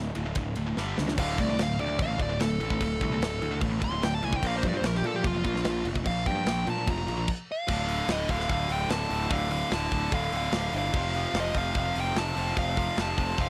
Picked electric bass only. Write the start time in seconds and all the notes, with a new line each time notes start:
Already playing: D1
0.16 D1
0.36 D1
0.57 D1
0.77 G1
0.98 C#2
1.18 D1
1.38 C2
1.58 D1
1.78 D2
1.99 A1
2.19 D1
2.40 D1
2.60 A1
2.81 D1
3.01 C2
3.21 D1
3.42 D2
3.61 A1
3.82 D1
4.02 D1
4.22 C2
4.42 A#1
4.63 G2
4.82 A#1
5.02 A#2
5.24 F1
5.44 A#1
5.64 A#1
5.85 F1
6.06 A#1
6.26 G2
6.46 A#1
6.67 A#2
6.87 F1
7.08 A#1
7.69 D1
8.08 D1
8.30 D1
8.50 D1
8.69 D1
8.89 D1
9.11 D1
9.31 D1
9.72 D1
9.92 D1
10.12 D1
10.32 D1
10.52 D1
10.73 G1
10.93 F1
11.34 F1
11.55 F1
11.75 F1
11.96 F1
12.16 F1
12.36 F1
12.57 F1
12.98 F1
13.18 F1
13.39 F1